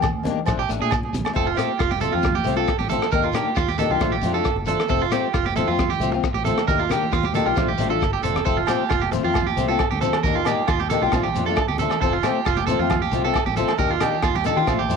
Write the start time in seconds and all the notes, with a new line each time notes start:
Already playing: D#2
0.02 kick, cross-stick, low agogo, shekere
0.23 D#3 A#3 D4 G4, closed hi-hat, high conga, low conga
0.46 A#1 F3 A3 D4, kick, cross-stick, low agogo, shekere
0.59 A#1 G4
0.69 A1 A3 D4, closed hi-hat, high conga, shekere
0.79 A#2 A3 D4 G#4
0.91 kick, cross-stick, low agogo, shekere
1.03 high conga
1.13 A#1, closed hi-hat, high conga, low conga, shekere
1.25 cross-stick, low agogo
1.33 F1 A3 C4 F4 A4, kick, shekere
1.47 F4
1.55 A3 C4 F4 G4, high conga, shekere
1.59 cross-stick, closed hi-hat
1.79 F1 F4, kick, cross-stick, shekere
1.91 G4, high conga
2.00 A3 F4 A4, muted steel-string acoustic guitar stroke, closed hi-hat, low conga, shekere
2.11 F2 C4 F4
2.22 kick, cross-stick, high conga, low conga, shekere
2.35 G4
2.44 C2 A3 C4 F4, closed hi-hat, high conga, shekere
2.56 C4 F4 A4, shekere
2.67 kick, cross-stick, shekere
2.79 A1 G4, high conga
2.89 A3 C4 F4 A4, closed hi-hat, low conga, shekere
3.02 cross-stick
3.11 D#2 D#3 A#3 D4 G4 A#4, kick, shekere
3.24 F4
3.33 D#3 A#3 D4 G4, cross-stick, closed hi-hat, high conga, shekere
3.55 D#2 F4, kick, cross-stick, shekere
3.68 G4, high conga
3.78 D#3 A#3 D4 G4 A4, closed hi-hat, low conga, shekere
3.90 C2 D4 F4 G4
3.94 A#3
4.00 A#1 F3 A3 D4 F4, kick, cross-stick, high conga, low conga, shekere
4.12 G4
4.22 F2 F3 A3 D4, closed hi-hat, high conga, shekere
4.26 F4
4.33 A3 D4 F4 A4, shekere
4.44 kick, cross-stick, shekere
4.56 F#1, high conga
4.66 F3 A3 D4 F4 A4, closed hi-hat, low conga, shekere
4.80 cross-stick
4.88 F1 A3 C4 F4 A4, kick, shekere
5.02 F4
5.11 A3 C4 F4 G4, cross-stick, closed hi-hat, high conga, shekere
5.34 F1 F4, kick, cross-stick, shekere
5.46 G4, high conga
5.55 A3 C4 F4 A4, closed hi-hat, low conga, shekere
5.68 F2 C4 F4
5.79 kick, cross-stick, high conga, low conga, shekere
5.90 G4
6.00 C2 A3 C4 F4, closed hi-hat, high conga, shekere
6.12 C4 F4, muted clean electric guitar stroke, shekere
6.24 kick, cross-stick, shekere
6.34 A1 G4, high conga
6.44 A3 C4 F4 A4, closed hi-hat, low conga, shekere
6.58 cross-stick
6.68 D#2 D#3 D4 G4 A#4, muted steel-string acoustic guitar stroke, kick, shekere
6.79 F4
6.89 D#3 A#3 D4 G4, cross-stick, closed hi-hat, high conga, low conga, shekere
7.02 shekere
7.12 D#2 F4, kick, cross-stick, shekere
7.24 G4, high conga
7.34 D#3 A#3 D4 G4 A4, closed hi-hat, low conga, shekere
7.45 B1 A#3 D4 F4 G4, shekere
7.55 A#1 F3 A3 D4 F4, kick, cross-stick, high conga, low conga, shekere
7.68 G4
7.78 A1 F3 A3 D4 F4, closed hi-hat, high conga, shekere
7.89 A3 D4 F4 A4
8.01 G1, kick, cross-stick, shekere
8.13 G4, high conga
8.23 F1 F3 A3 D4 F4 A4, closed hi-hat, low conga, shekere
8.34 cross-stick, low conga, shekere
8.45 F1 F3 A3 C4 F4 A4, kick, shekere
8.57 F4
8.67 F3 C4 F4 G4, cross-stick, closed hi-hat, high conga, low agogo, shekere
8.89 F1 F4, kick, cross-stick, low agogo, shekere
9.01 G4, high conga
9.11 F3 A3 C4 F4, muted clean electric guitar stroke, closed hi-hat, low conga, shekere
9.23 F2 A3 C4 F4
9.34 kick, cross-stick, high conga, low conga, low agogo, shekere
9.47 G4
9.57 C2 F3 A3 C4 F4, closed hi-hat, high conga, shekere
9.68 A3 C4 F4 A4, shekere
9.79 kick, cross-stick, low agogo, shekere
9.91 D2 G4, high conga
10.00 F3 A3 C4 F4 A4, closed hi-hat, low conga, shekere
10.13 cross-stick, low agogo
10.23 D#2 D#3 A#3 D4 G4 A#4, kick, shekere
10.35 F4
10.45 D#3 A#3 D4 G4, cross-stick, closed hi-hat, high conga, low agogo, shekere
10.68 D#2 F4, kick, cross-stick, low agogo, shekere
10.80 G4, high conga
10.90 D#3 A#3 D4 G4 A4, closed hi-hat, low conga, shekere
11.02 B1 A#3 D4 F4 G4
11.12 A#1 F3 A3 D4, kick, cross-stick, high conga, low conga, low agogo, shekere
11.16 F4
11.23 G4
11.35 F2 F3 A3 D4, closed hi-hat, high conga, shekere
11.39 F4
11.46 D4 F4 A4, shekere
11.51 A3
11.56 kick, cross-stick, low agogo, shekere
11.68 D2 G4, high conga
11.78 F3 A3 A4, closed hi-hat, low conga, shekere
11.82 D4 F4
11.90 cross-stick, low agogo
12.02 F1 F3 A3 C4 F4 A4, kick, shekere
12.13 F4
12.23 F3 A3 C4 F4 G4, cross-stick, closed hi-hat, high conga, low agogo, shekere
12.45 F1 F4, kick, cross-stick, low agogo, shekere
12.57 G4, high conga
12.67 F3 A3 C4 A4, closed hi-hat, low conga, shekere
12.71 F4
12.79 F2 A3 C4 F4
12.90 kick, cross-stick, high conga, low conga, low agogo, shekere
13.02 G4
13.12 C2 F3 A3 C4 F4, closed hi-hat, high conga, shekere
13.24 A3 C4 F4 A4, shekere
13.34 kick, cross-stick, low agogo, shekere
13.46 A1 G4, high conga
13.56 F3 A3 C4 F4 A4, closed hi-hat, low conga, shekere
13.68 cross-stick, low agogo
13.77 D#2 D#3 D4 G4 A#4, muted steel-string acoustic guitar stroke, kick, shekere
13.91 F4
14.00 D#3 A#3 D4 G4, cross-stick, closed hi-hat, low conga, low agogo, shekere
14.13 shekere
14.23 D#2 F4, kick, cross-stick, low agogo, shekere
14.35 G4, high conga
14.44 D#3 A#3 D4 G4 A4, closed hi-hat, low conga, shekere
14.56 D#3 A#3 D4 F4 G4, shekere
14.66 A#1 F3 A3 D4 F4, kick, cross-stick, high conga, low conga, low agogo, shekere
14.79 G4
14.88 F2 F3 A3 D4 F4, closed hi-hat, high conga, shekere